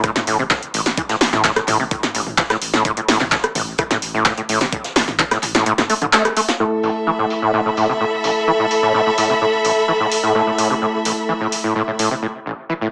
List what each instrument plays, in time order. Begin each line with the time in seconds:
0.03 acid bass A2, kick, cross-stick, closed hi-hat
0.16 acid bass A2, snare, closed hi-hat, mid tom
0.27 sub bass A1, acid bass A2, closed hi-hat, open hi-hat
0.39 acid bass C3, closed hi-hat
0.50 acid bass A2, kick, snare, clap, closed hi-hat
0.63 closed hi-hat
0.74 sub bass A1, acid bass A1, closed hi-hat, open hi-hat
0.86 snare
0.97 acid bass E3, kick, closed hi-hat
1.09 acid bass A2, snare, closed hi-hat
1.21 sub bass A1, snare, closed hi-hat, open hi-hat
1.33 sub bass A1, acid bass A2, snare, mid tom
1.44 acid bass A2, kick, snare, clap, closed hi-hat
1.56 acid bass A2, cross-stick, snare, closed hi-hat
1.68 sub bass A1, acid bass A2, clap, closed hi-hat, mid tom, open hi-hat
1.80 acid bass C3
1.91 acid bass A2, kick, closed hi-hat
2.03 snare, closed hi-hat, mid tom
2.15 acid bass A1, sub bass A1, closed hi-hat, open hi-hat
2.27 closed hi-hat, mid tom
2.38 acid bass E3, kick, snare, clap, closed hi-hat
2.50 acid bass A2, cross-stick, snare, closed hi-hat
2.62 sub bass A1, closed hi-hat, open hi-hat
2.73 acid bass A2, snare, closed hi-hat
2.85 acid bass A2, kick, closed hi-hat
2.97 acid bass A2, closed hi-hat
3.08 sub bass A1, acid bass A2, snare, open hi-hat
3.20 sub bass A1, acid bass C3, snare, clap, mid tom
3.32 acid bass A2, kick, snare, clap, closed hi-hat
3.44 cross-stick, closed hi-hat
3.55 acid bass A1, sub bass A1, closed hi-hat, mid tom, open hi-hat
3.78 acid bass E3, kick, cross-stick, closed hi-hat
3.91 acid bass A2, snare, closed hi-hat, mid tom
4.02 sub bass A1, closed hi-hat, open hi-hat
4.14 acid bass A2, closed hi-hat
4.26 acid bass A2, kick, snare, clap, closed hi-hat
4.38 acid bass A2, closed hi-hat
4.49 sub bass A1, acid bass A2, closed hi-hat, open hi-hat
4.61 acid bass C3, snare
4.72 acid bass A2, kick, closed hi-hat
4.84 snare, closed hi-hat
4.95 acid bass A1, sub bass A1, snare, closed hi-hat, open hi-hat
5.08 sub bass A1, snare, mid tom
5.19 acid bass E3, kick, snare, clap, closed hi-hat
5.31 acid bass A2, cross-stick, snare, closed hi-hat
5.43 sub bass A1, clap, closed hi-hat, mid tom, open hi-hat
5.55 acid bass A2, snare
5.66 acid bass A2, closed hi-hat
5.78 acid bass A2, snare, closed hi-hat, mid tom
5.90 acid bass A3, closed hi-hat, open hi-hat
6.02 acid bass D3, closed hi-hat, mid tom
6.13 acid bass A3, snare, clap, closed hi-hat
6.25 cross-stick, closed hi-hat
6.37 acid bass A3, closed hi-hat, open hi-hat
6.48 snare, closed hi-hat
6.60 acid bass A2, tine electric piano A3 E4 A4, string section A4
6.78 string section E5
6.83 acid bass A1, open hi-hat
7.01 string section B5
7.07 acid bass E3
7.19 acid bass A2
7.30 open hi-hat
7.42 acid bass A2
7.54 acid bass A2
7.66 acid bass A2
7.77 acid bass A2, open hi-hat
7.89 acid bass C3
8.01 acid bass A2
8.24 acid bass A1, open hi-hat
8.47 acid bass E3
8.59 acid bass A2
8.71 open hi-hat
8.83 acid bass A2
8.94 acid bass A2
9.06 acid bass A2
9.18 acid bass A2, open hi-hat
9.30 acid bass C3
9.41 acid bass A2
9.65 acid bass A1, open hi-hat
9.88 acid bass E3
10.00 acid bass A2
10.12 open hi-hat
10.23 acid bass A2
10.35 acid bass A2, tine electric piano A3 E4 A4
10.47 acid bass A2
10.58 acid bass A2, open hi-hat
10.70 acid bass C3
10.82 acid bass A2
11.05 acid bass A1, open hi-hat
11.29 acid bass E3
11.41 acid bass A2
11.52 open hi-hat
11.64 acid bass A2
11.76 acid bass A2
11.88 acid bass A2
11.99 acid bass A2, open hi-hat
12.11 acid bass C3
12.23 acid bass A2
12.46 acid bass A1
12.69 acid bass E3
12.81 acid bass A2